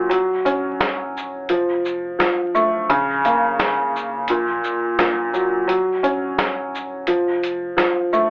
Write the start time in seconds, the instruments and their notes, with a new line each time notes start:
Already playing: upright piano A#2 F#3
0.09 sub bass D#1, upright piano F#3, closed hi-hat
0.45 sub bass D#1, upright piano C#4, closed hi-hat, shaker
0.81 snare, closed hi-hat
1.17 shaker
1.49 sub bass F1, upright piano F3, closed hi-hat
1.85 shaker
2.19 upright piano F3, snare, closed hi-hat
2.55 upright piano A3, shaker
2.89 sub bass A#1, upright piano C#3, closed hi-hat
3.25 upright piano A#3, closed hi-hat, shaker
3.59 snare, closed hi-hat
3.96 shaker
4.28 sub bass A#1, upright piano A#2, closed hi-hat
4.64 shaker
4.99 upright piano A#2, snare, closed hi-hat
5.33 upright piano F#3, shaker
5.67 sub bass D#1, upright piano F#3, closed hi-hat
6.03 sub bass D#1, upright piano C#4, closed hi-hat, shaker
6.39 snare, closed hi-hat
6.75 shaker
7.07 sub bass F1, upright piano F3, closed hi-hat
7.43 closed hi-hat, shaker
7.77 upright piano F3, snare, closed hi-hat
8.13 upright piano A3, shaker